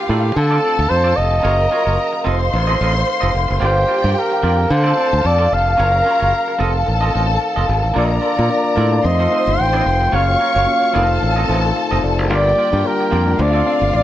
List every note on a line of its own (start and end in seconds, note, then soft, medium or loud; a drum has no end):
0.00 1.41 D3 medium
0.00 1.41 A3 medium
0.00 0.34 A#3 medium
0.00 0.33 F4 medium
0.00 0.38 G4 medium
0.00 0.34 F5 medium
0.00 12.26 F5 medium
0.09 0.30 A2 medium
0.09 0.26 A#3 medium
0.09 0.25 F4 medium
0.09 0.24 A4 loud
0.09 0.23 D5 medium
0.25 muted clean electric guitar stroke soft
0.36 0.58 D3 loud
0.36 1.43 C4 medium
0.36 0.91 A4 loud
0.36 1.42 A4 medium
0.36 1.42 A5 medium
0.36 muted clean electric guitar stroke soft
0.51 0.61 C4 medium
0.51 0.62 F4 medium
0.51 0.63 A4 medium
0.51 0.63 D5 medium
0.63 0.77 C4 medium
0.63 0.77 F4 medium
0.63 0.77 A4 medium
0.63 0.76 D5 medium
0.78 0.88 D2 loud
0.78 muted clean electric guitar stroke soft
0.89 1.12 F2 loud
0.89 1.18 C5 loud
0.89 muted clean electric guitar stroke soft
1.04 1.15 C4 medium
1.04 1.15 F4 medium
1.04 1.15 A4 medium
1.04 1.16 D5 medium
1.16 1.39 F1 medium
1.16 2.80 D#5 loud
1.30 muted clean electric guitar stroke soft
1.43 1.66 F#1 loud
1.43 2.25 C#3 medium
1.43 2.25 F#3 medium
1.43 2.25 A#3 medium
1.43 1.61 C#4 medium
1.43 1.59 F4 medium
1.43 2.24 A#4 medium
1.43 1.58 A#4 medium
1.43 1.58 C#5 loud
1.43 2.24 A#5 medium
1.59 muted clean electric guitar stroke medium
1.70 1.85 C#4 medium
1.70 1.86 F4 medium
1.70 1.84 A#4 medium
1.70 1.84 C#5 medium
1.85 1.96 F#1 medium
1.85 1.98 C#4 soft
1.85 1.98 F4 medium
1.85 1.97 A#4 medium
1.85 1.97 C#5 medium
2.13 muted clean electric guitar stroke soft
2.24 2.48 F1 medium
2.24 3.60 D#3 medium
2.24 3.60 A3 medium
2.24 2.42 C4 loud
2.24 3.60 C4 medium
2.24 2.40 F4 loud
2.24 2.40 A4 loud
2.24 3.59 C5 medium
2.24 2.39 D#5 loud
2.24 3.59 C6 loud
2.40 muted clean electric guitar stroke soft
2.52 2.75 A1 loud
2.52 muted clean electric guitar stroke medium
2.67 2.78 C4 medium
2.67 2.79 F4 medium
2.67 2.80 A4 medium
2.67 2.80 D#5 medium
2.80 3.02 A1 loud
2.80 2.94 C4 medium
2.80 2.94 F4 medium
2.80 2.95 A4 medium
2.80 2.94 D#5 medium
2.95 muted clean electric guitar stroke medium
3.07 muted clean electric guitar stroke soft
3.21 3.32 F1 loud
3.21 3.32 C4 medium
3.21 3.33 F4 medium
3.21 3.33 A4 medium
3.21 3.33 D#5 loud
3.34 3.46 F1 medium
3.34 muted clean electric guitar stroke soft
3.48 3.59 F#1 loud
3.48 muted clean electric guitar stroke soft
3.60 3.83 G1 loud
3.60 5.76 D3 medium
3.60 4.69 G3 medium
3.60 3.78 A#3 medium
3.60 4.69 A#3 medium
3.60 3.75 F4 loud
3.60 3.75 G4 loud
3.60 4.68 G4 medium
3.60 3.75 D5 loud
3.60 4.68 G5 medium
3.65 4.11 C5 loud
3.76 muted clean electric guitar stroke soft
3.87 4.02 A#3 medium
3.87 4.02 F4 medium
3.87 4.02 G4 medium
3.87 4.01 D5 medium
4.02 4.13 G2 loud
4.02 4.15 A#3 medium
4.02 4.15 F4 medium
4.02 4.15 G4 medium
4.02 4.14 D5 medium
4.11 4.20 C5 medium
4.18 4.73 A#4 loud
4.30 muted clean electric guitar stroke medium
4.42 4.65 F2 medium
4.42 4.60 A#3 loud
4.42 4.57 F4 loud
4.42 4.57 G4 loud
4.42 4.56 D5 loud
4.57 muted clean electric guitar stroke soft
4.69 4.92 D3 loud
4.69 5.77 A3 medium
4.69 5.78 C4 medium
4.69 5.76 A4 medium
4.69 5.28 C5 loud
4.69 5.77 A5 loud
4.69 muted clean electric guitar stroke soft
4.84 4.94 C4 medium
4.84 4.95 F4 medium
4.84 4.96 A4 medium
4.84 4.96 D5 medium
4.96 5.10 C4 medium
4.96 5.11 F4 medium
4.96 5.10 A4 medium
4.96 5.10 D5 medium
5.11 5.22 D2 loud
5.11 muted clean electric guitar stroke soft
5.24 5.46 F2 medium
5.24 5.55 D5 loud
5.24 muted clean electric guitar stroke soft
5.38 5.49 C4 medium
5.38 5.50 F4 medium
5.38 5.50 A4 medium
5.38 5.51 D5 loud
5.51 5.74 F1 loud
5.51 7.15 F5 loud
5.51 muted clean electric guitar stroke soft
5.66 muted clean electric guitar stroke soft
5.78 6.01 F#1 loud
5.78 6.59 C#3 medium
5.78 6.59 F#3 medium
5.78 6.59 A#3 medium
5.78 5.95 C#4 loud
5.78 5.93 F4 medium
5.78 6.58 A#4 medium
5.78 5.92 A#4 loud
5.78 5.92 C#5 loud
5.78 6.58 A#5 medium
5.93 muted clean electric guitar stroke soft
6.05 6.19 C#4 medium
6.05 6.20 F4 medium
6.05 6.19 A#4 medium
6.05 6.18 C#5 medium
6.19 6.31 F#1 loud
6.19 6.32 C#4 medium
6.19 6.32 F4 medium
6.19 6.32 A#4 medium
6.19 6.31 C#5 medium
6.48 muted clean electric guitar stroke medium
6.59 6.82 F1 loud
6.59 7.94 D#3 medium
6.59 7.95 A3 medium
6.59 6.77 C4 medium
6.59 7.94 C4 medium
6.59 6.74 F4 medium
6.59 6.73 A4 loud
6.59 7.93 A4 medium
6.59 6.73 D#5 loud
6.59 7.93 A5 loud
6.74 muted clean electric guitar stroke medium
6.86 7.09 A1 medium
6.86 muted clean electric guitar stroke medium
7.01 7.12 C4 medium
7.01 7.13 F4 medium
7.01 7.14 A4 medium
7.01 7.14 D#5 loud
7.14 7.36 A1 medium
7.14 7.28 C4 medium
7.14 7.28 F4 medium
7.14 7.28 A4 medium
7.14 7.27 D#5 medium
7.29 muted clean electric guitar stroke soft
7.41 muted clean electric guitar stroke soft
7.56 7.66 F1 medium
7.56 7.67 C4 medium
7.56 7.67 F4 medium
7.56 7.67 A4 medium
7.56 7.68 D#5 medium
7.68 7.81 G#1 loud
7.68 muted clean electric guitar stroke soft
7.83 7.94 A1 loud
7.83 muted clean electric guitar stroke soft
7.94 8.18 A#1 loud
7.94 9.03 D3 medium
7.94 10.11 F3 medium
7.94 8.12 A#3 loud
7.94 8.40 A#3 medium
7.94 9.03 A#3 medium
7.94 8.40 D4 medium
7.94 8.09 F4 medium
7.94 8.40 F4 medium
7.94 8.09 A4 medium
7.94 8.41 A#4 medium
7.94 9.02 A#4 medium
7.94 8.08 D5 medium
7.94 8.41 D5 medium
7.94 8.06 D5 medium
7.94 9.02 A#5 medium
8.05 8.15 D#5 medium
8.09 9.07 D5 medium
8.09 muted clean electric guitar stroke medium
8.20 8.36 A#3 medium
8.20 8.36 F4 medium
8.20 8.35 A4 medium
8.20 8.35 D5 medium
8.36 8.48 A#2 loud
8.36 8.49 A#3 medium
8.36 8.49 F4 medium
8.36 8.48 A4 medium
8.36 8.48 D5 medium
8.49 8.83 A#3 medium
8.49 8.83 D4 medium
8.49 8.83 F4 medium
8.49 8.83 A#4 medium
8.49 8.83 D5 medium
8.64 muted clean electric guitar stroke soft
8.76 8.99 A2 medium
8.76 8.94 A#3 medium
8.76 8.91 F4 medium
8.76 8.91 A4 medium
8.76 8.90 D5 medium
8.91 9.04 A#3 medium
8.91 9.04 D4 medium
8.91 9.03 F4 medium
8.91 9.04 A4 medium
8.91 9.04 D5 medium
8.91 muted clean electric guitar stroke medium
9.03 9.26 F2 loud
9.03 10.12 D#3 medium
9.03 9.26 A3 medium
9.03 9.27 C4 medium
9.03 10.12 C4 medium
9.03 9.27 D#4 medium
9.03 9.27 F4 medium
9.03 9.27 C5 medium
9.03 10.11 C5 medium
9.03 9.62 D#5 loud
9.03 10.11 C6 medium
9.03 muted clean electric guitar stroke soft
9.19 9.30 C4 medium
9.19 9.30 F4 medium
9.19 9.31 A4 medium
9.19 9.31 D#5 medium
9.31 9.65 A3 medium
9.31 9.45 C4 medium
9.31 9.65 C4 medium
9.31 9.65 D#4 medium
9.31 9.46 F4 medium
9.31 9.65 F4 medium
9.31 9.45 A4 medium
9.31 9.66 C5 medium
9.31 9.45 D#5 medium
9.46 9.57 G1 loud
9.46 muted clean electric guitar stroke soft
9.58 9.80 A1 medium
9.58 10.17 G5 loud
9.58 muted clean electric guitar stroke soft
9.73 10.06 A3 medium
9.73 10.06 C4 medium
9.73 9.84 C4 medium
9.73 10.06 D#4 medium
9.73 9.85 F4 medium
9.73 10.06 F4 medium
9.73 9.85 A4 medium
9.73 10.06 C5 medium
9.73 9.86 D#5 medium
9.85 10.08 F1 loud
9.85 muted clean electric guitar stroke soft
10.01 muted clean electric guitar stroke medium
10.12 10.35 F#1 loud
10.12 10.93 C#3 medium
10.12 10.93 F#3 medium
10.12 10.93 A#3 medium
10.12 10.58 A#3 medium
10.12 10.30 C#4 loud
10.12 10.58 C#4 medium
10.12 10.28 F4 loud
10.12 10.58 F4 medium
10.12 10.58 F#4 medium
10.12 10.28 A#4 loud
10.12 10.93 C#5 medium
10.12 10.58 C#5 medium
10.12 10.27 C#5 loud
10.12 12.04 F5 loud
10.12 10.93 C#6 medium
10.28 muted clean electric guitar stroke medium
10.39 10.54 C#4 medium
10.39 10.54 F4 medium
10.39 10.54 A#4 medium
10.39 10.53 C#5 medium
10.54 10.65 F#1 loud
10.54 10.67 C#4 soft
10.54 10.67 F4 medium
10.54 10.66 A#4 medium
10.54 10.66 C#5 medium
10.66 10.94 A#3 medium
10.66 10.94 C#4 medium
10.66 10.93 F4 medium
10.66 10.95 F#4 medium
10.66 10.95 C#5 medium
10.82 muted clean electric guitar stroke medium
10.93 11.17 F1 loud
10.93 12.29 D#3 medium
10.93 11.39 A3 medium
10.93 12.29 A3 medium
10.93 11.15 C4 medium
10.93 11.39 C4 medium
10.93 12.29 C4 medium
10.93 11.39 D#4 medium
10.93 11.09 F4 loud
10.93 11.40 F4 medium
10.93 11.09 A4 loud
10.93 12.28 A4 medium
10.93 11.02 A#4 medium
10.93 11.09 D#5 medium
10.93 12.28 A5 loud
11.01 11.43 C5 loud
11.10 muted clean electric guitar stroke soft
11.21 11.44 A1 loud
11.21 muted clean electric guitar stroke soft
11.36 11.47 C4 medium
11.36 11.47 F4 medium
11.36 11.48 A4 medium
11.36 11.48 D#5 medium
11.48 11.71 A1 loud
11.48 11.82 A3 medium
11.48 11.82 C4 medium
11.48 11.63 C4 medium
11.48 11.82 D#4 medium
11.48 11.63 F4 medium
11.48 11.82 F4 medium
11.48 11.63 A4 medium
11.48 11.83 C5 loud
11.48 11.62 D#5 medium
11.64 muted clean electric guitar stroke soft
11.76 12.01 F5 medium
11.76 muted clean electric guitar stroke soft
11.91 12.01 F1 medium
11.91 12.23 A3 medium
11.91 12.23 C4 medium
11.91 12.03 C4 medium
11.91 12.24 D#4 medium
11.91 12.24 F4 medium
11.91 12.03 F4 medium
11.91 12.03 A4 medium
11.91 12.24 C5 medium
11.91 12.04 D#5 medium
12.03 12.19 F1 medium
12.03 12.29 D5 medium
12.18 12.30 F#1 medium
12.18 muted clean electric guitar stroke soft
12.29 12.52 G1 loud
12.29 13.38 D3 medium
12.29 12.75 G3 medium
12.29 13.39 G3 medium
12.29 12.48 A#3 medium
12.29 12.75 A#3 medium
12.29 13.38 A#3 medium
12.29 12.76 D4 medium
12.29 12.45 F4 medium
12.29 12.76 F4 medium
12.29 13.38 G4 medium
12.29 12.45 G4 loud
12.29 12.76 A#4 medium
12.29 12.45 D5 loud
12.29 12.89 D5 loud
12.29 13.38 G5 medium
12.46 muted clean electric guitar stroke medium
12.57 12.72 A#3 medium
12.57 12.72 F4 medium
12.57 12.72 G4 medium
12.57 12.72 D5 medium
12.73 12.82 G2 loud
12.73 12.85 A#3 soft
12.73 12.84 F4 medium
12.73 12.84 G4 medium
12.73 12.84 D5 medium
12.84 13.18 G3 medium
12.84 13.18 A#3 medium
12.84 13.18 D4 medium
12.84 13.19 F4 medium
12.84 13.19 A#4 medium
12.84 13.43 A#4 loud
13.01 muted clean electric guitar stroke medium
13.11 13.34 F2 medium
13.11 13.29 A#3 loud
13.11 13.26 F4 loud
13.11 13.26 G4 loud
13.11 13.25 D5 loud
13.26 13.39 G3 medium
13.26 13.39 A#3 medium
13.26 13.38 D4 medium
13.26 13.38 F4 medium
13.26 13.40 A#4 medium
13.26 muted clean electric guitar stroke medium
13.38 13.61 D2 loud
13.38 14.03 D3 medium
13.38 13.61 A3 medium
13.38 14.03 A3 medium
13.38 13.62 C4 medium
13.38 14.03 C4 medium
13.38 13.62 D4 medium
13.38 14.03 F4 medium
13.38 13.62 F4 medium
13.38 13.62 C5 medium
13.38 13.95 D5 loud
13.38 14.03 F5 loud
13.38 muted clean electric guitar stroke soft
13.53 13.64 C4 medium
13.53 13.65 F4 medium
13.53 13.65 A4 medium
13.53 13.66 D5 medium
13.65 14.00 A3 medium
13.65 13.80 C4 medium
13.65 14.00 C4 medium
13.65 14.00 D4 medium
13.65 13.80 F4 medium
13.65 14.00 F4 medium
13.65 13.80 A4 medium
13.65 13.80 D5 medium
13.65 14.00 D5 medium
13.81 13.91 G1 loud
13.81 muted clean electric guitar stroke soft
13.93 14.03 A1 loud
13.93 14.03 D5 loud
13.93 muted clean electric guitar stroke soft